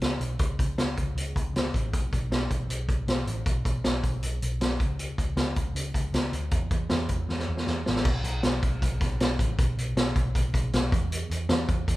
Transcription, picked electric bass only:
0.02 C#2
0.20 B1
0.39 C#2
0.59 C#2
0.78 C#2
0.97 C#2
1.15 C#2
1.36 C#2
1.53 C#2
1.74 A1
1.93 B1
2.12 B1
2.30 B1
2.51 B1
2.69 B1
2.89 B1
3.07 B1
3.27 A1
3.46 B1
3.65 B1
3.85 B1
4.04 B1
4.23 B1
4.43 B1
4.60 B1
4.80 C#2
5.18 C#2
5.36 C#2
5.56 C#2
5.74 C#2
5.95 C#2
6.13 C#2
6.32 D2
6.52 E2
6.71 E2
6.91 E2
7.09 E2
7.28 E2
7.49 E2
7.67 E2
7.87 A1
8.05 B1
8.24 B1
8.44 B1
8.63 B1
8.82 B1
9.00 B1
9.20 B1
9.39 A1
9.59 B1
9.78 B1
9.96 B1
10.16 B1
10.35 B1
10.54 B1
10.74 B1
10.92 E2
11.30 E2
11.49 E2
11.69 E2
11.88 E2

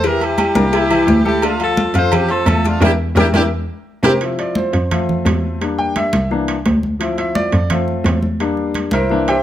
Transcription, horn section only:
0.05 G4 A#4
0.23 E4 G4
1.26 E4 G4
1.43 D4 F4
1.61 F4 A4
1.96 A4 C5
2.14 C4 G4
2.30 F4 A4
2.66 D4 F4
2.83 D4 E4 G4
3.18 D4 E4 G4
3.34 D4 E4 G4
4.04 C4 E4 G4

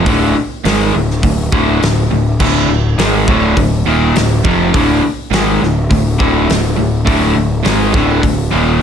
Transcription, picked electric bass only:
0.07 D1
0.36 muted picked electric bass stroke
0.65 G#1
0.94 D1
1.23 D1
1.52 D1
1.82 D1
2.11 D1
2.40 D1
2.68 D1
2.98 G#1
3.28 D1
3.57 D1
3.86 D#1
4.15 D1
4.45 F1
4.75 D1
5.03 muted picked electric bass stroke
5.31 G#1
5.61 D1
5.91 D1
6.20 D1
6.50 D1
6.78 D1
7.07 D1
7.37 D1
7.65 G#1
7.94 D1
8.23 D1
8.53 D#1

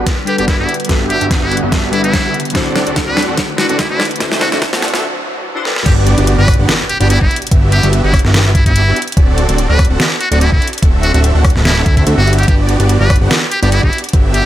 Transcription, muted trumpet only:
0.27 G4
0.39 G4
0.48 E4
0.59 E4
1.10 G4
1.42 E4
1.93 E4
2.04 E4
3.07 B4
3.58 F#4
3.69 F#4
3.79 E4
3.90 E4
4.41 F#4
4.52 F#4
5.86 G4
6.39 B4
6.89 G4
7.01 G4
7.10 E4
7.21 E4
7.72 G4
8.04 E4
8.55 E4
8.66 E4
9.70 B4
10.21 F#4
10.32 F#4
10.41 E4
10.52 E4
11.03 F#4
11.14 F#4
11.65 E4
11.86 E4
11.97 E4
12.18 F#4
12.39 G4
12.48 G4
13.00 B4
13.51 G4
13.63 G4
13.72 E4
13.83 E4
14.34 G4

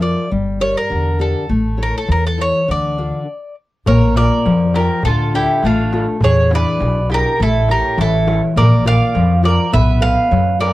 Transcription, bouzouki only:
0.02 D5
0.61 C#5
0.77 A#4
1.21 A4
1.83 A#4
1.98 A4
2.12 A#4
2.27 A4
2.41 C#5
2.71 D5
3.87 C#5
4.17 D5
4.76 A#4
5.05 A4
5.35 G4
5.66 F4
6.24 C#5
6.55 D5
7.14 A#4
7.43 A4
7.71 A#4
8.01 A4
8.57 D5
8.87 F5
9.45 D5
9.73 E5
10.02 F5
10.60 D5

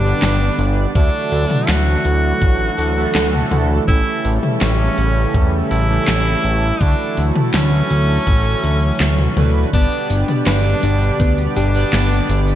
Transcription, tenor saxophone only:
Already playing: D4
0.95 D4
1.68 F#4
3.88 E4
4.61 C#4
5.71 E4
6.81 D4
7.54 C#4
9.74 D4
10.47 D4
11.56 D4

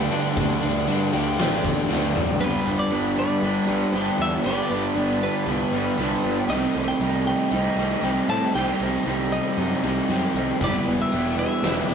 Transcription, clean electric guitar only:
Already playing: G5
2.41 B4
2.79 D5
3.19 D5
3.92 C5
4.22 E5
4.46 D5
5.23 B4
6.50 D#5
6.88 G5
7.27 G5
8.30 A5
8.55 G5
9.32 D#5
10.64 D5
11.02 E5
11.39 E5

